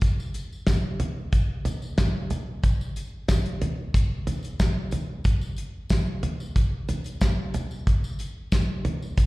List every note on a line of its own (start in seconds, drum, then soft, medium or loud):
0.01 kick loud
0.01 closed hi-hat medium
0.01 tambourine soft
0.20 tambourine soft
0.34 closed hi-hat medium
0.34 tambourine soft
0.52 tambourine soft
0.67 kick medium
0.67 snare medium
0.67 closed hi-hat medium
0.67 tambourine medium
1.00 closed hi-hat medium
1.00 floor tom medium
1.33 kick medium
1.33 closed hi-hat medium
1.33 tambourine soft
1.65 closed hi-hat medium
1.65 floor tom medium
1.65 tambourine soft
1.82 tambourine soft
1.98 kick loud
1.98 snare loud
1.98 closed hi-hat medium
1.98 tambourine medium
2.30 closed hi-hat medium
2.30 floor tom medium
2.30 tambourine soft
2.63 kick medium
2.63 closed hi-hat medium
2.63 tambourine soft
2.81 tambourine soft
2.96 closed hi-hat medium
2.96 tambourine soft
3.28 kick medium
3.28 snare medium
3.28 closed hi-hat medium
3.28 tambourine medium
3.46 closed hi-hat soft
3.62 closed hi-hat medium
3.62 floor tom medium
3.94 kick loud
3.94 closed hi-hat medium
3.94 tambourine soft
4.27 closed hi-hat medium
4.27 floor tom medium
4.27 tambourine soft
4.43 closed hi-hat soft
4.43 tambourine soft
4.60 kick loud
4.60 snare medium
4.60 closed hi-hat medium
4.60 tambourine medium
4.91 closed hi-hat medium
4.91 floor tom medium
4.91 tambourine soft
5.24 kick loud
5.24 closed hi-hat medium
5.24 tambourine soft
5.41 tambourine soft
5.56 closed hi-hat medium
5.56 tambourine soft
5.90 kick medium
5.90 snare loud
5.90 closed hi-hat medium
5.90 tambourine medium
6.23 closed hi-hat medium
6.23 floor tom medium
6.40 tambourine soft
6.56 kick medium
6.56 closed hi-hat medium
6.56 tambourine soft
6.88 closed hi-hat medium
6.88 floor tom medium
6.88 tambourine soft
7.04 closed hi-hat soft
7.04 tambourine soft
7.21 kick loud
7.21 snare medium
7.21 closed hi-hat medium
7.21 tambourine medium
7.54 closed hi-hat medium
7.54 floor tom medium
7.54 tambourine soft
7.71 tambourine soft
7.87 kick loud
7.87 closed hi-hat medium
7.87 tambourine soft
8.04 tambourine soft
8.19 closed hi-hat medium
8.19 tambourine soft
8.52 kick medium
8.52 snare medium
8.52 closed hi-hat medium
8.52 tambourine medium
8.85 closed hi-hat medium
8.85 floor tom medium
9.02 tambourine soft
9.17 kick medium
9.17 closed hi-hat medium
9.17 tambourine soft